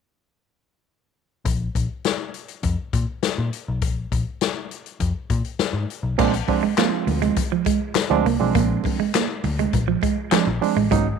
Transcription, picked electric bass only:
1.45 1.67 A#1 medium
1.75 1.86 A#1 medium
2.63 2.74 F2 medium
2.94 3.04 A#2 loud
3.38 3.49 A#2 medium
3.68 3.82 B1 medium
3.82 4.04 A#1 loud
4.12 4.23 A#1 medium
5.00 5.11 F2 loud
5.30 5.41 A#2 loud
5.59 muted picked electric bass stroke soft
5.73 5.84 G#2 medium
6.03 6.14 B1 medium
6.18 6.40 A#1 loud
6.62 muted picked electric bass stroke soft
7.07 7.29 D2 medium
8.11 8.22 D2 medium
8.25 8.36 C2 medium
8.41 8.51 B1 medium
8.55 8.77 A#1 loud
8.99 muted picked electric bass stroke soft
9.44 9.66 D2 medium
9.74 9.95 A#1 medium
10.32 muted picked electric bass stroke medium
10.47 10.58 A#1 medium
10.76 10.87 A1 medium
10.92 11.13 G#1 loud

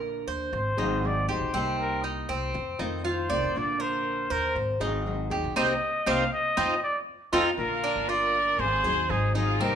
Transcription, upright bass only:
0.00 0.24 A#1 loud
0.27 0.51 D#2 medium
0.53 0.77 G#1 loud
0.78 1.26 G#1 loud
1.28 1.40 D#2 loud
1.41 1.53 A#1 loud
1.54 2.26 C2 medium
2.29 2.53 C2 medium
2.54 2.78 F2 loud
2.80 3.27 F2 loud
3.30 3.42 C2 loud
3.43 3.55 F2 loud
3.56 4.27 A#1 medium
4.31 4.55 D#2 medium
4.55 4.80 G#1 loud
4.81 5.29 G#1 loud
5.31 5.43 D#2 loud
5.44 5.56 A#1 loud
5.56 5.75 C2 medium
6.07 6.26 C2 loud
6.57 6.76 F2 medium
7.33 7.52 F2 medium
7.58 7.94 A#1 medium
7.96 8.56 G1 medium
8.59 8.83 G#1 loud
8.84 9.08 D#2 loud
9.10 9.58 G#1 loud
9.61 9.75 C2 loud

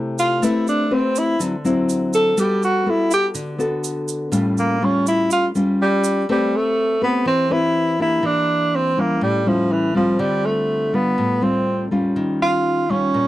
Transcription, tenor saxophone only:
0.19 0.46 F4 loud
0.44 0.68 E4 medium
0.69 0.95 D4 medium
0.93 1.20 C4 medium
1.18 1.41 E4 medium
2.15 2.41 A4 loud
2.39 2.63 G4 medium
2.64 2.91 F#4 medium
2.90 3.13 E4 medium
3.13 3.27 G4 loud
4.59 4.86 A#3 medium
4.84 5.07 C#4 medium
5.08 5.30 E4 loud
5.32 5.46 F4 medium
5.82 6.26 G3 loud
6.31 6.58 G3 medium
6.56 7.03 A3 medium
7.03 7.25 B3 medium
7.27 7.53 C4 loud
7.52 8.00 E4 loud
8.01 8.27 E4 loud
8.26 8.77 D4 loud
8.76 9.01 C4 medium
9.00 9.22 A#3 medium
9.23 9.49 G3 medium
9.48 9.74 F3 medium
9.72 9.96 E3 medium
9.96 10.21 F3 medium
10.20 10.47 G3 medium
10.45 10.96 A3 medium
10.95 11.44 B3 medium
11.43 11.92 C4 medium
12.42 12.92 F4 loud
12.90 13.28 C#4 loud

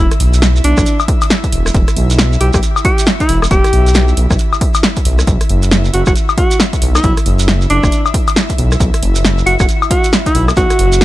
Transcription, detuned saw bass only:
0.20 0.60 B1 loud
0.64 0.74 B1 medium
0.78 0.84 B1 medium
1.52 1.70 E1 loud
1.74 1.84 E1 loud
1.96 2.37 B1 loud
2.41 2.50 B1 loud
2.54 2.60 B1 loud
3.29 3.46 E1 loud
3.51 3.61 E1 loud
3.73 4.13 B1 loud
4.17 4.27 B1 loud
4.31 4.37 B1 medium
5.05 5.23 B1 loud
5.27 5.37 B1 loud
5.50 5.90 F#1 loud
5.94 6.03 F#1 medium
6.07 6.13 F#1 medium
6.82 6.99 B1 loud
7.04 7.14 B1 loud
7.26 7.66 F#1 loud
7.70 7.80 F#1 loud
7.83 7.90 F#1 medium
8.58 8.76 B1 loud
8.80 8.90 B1 loud
9.02 9.43 F#1 loud
9.46 9.56 F#1 loud
9.60 9.66 F#1 medium
10.35 10.52 B1 loud
10.57 10.67 B1 loud
10.79 11.05 F#1 loud

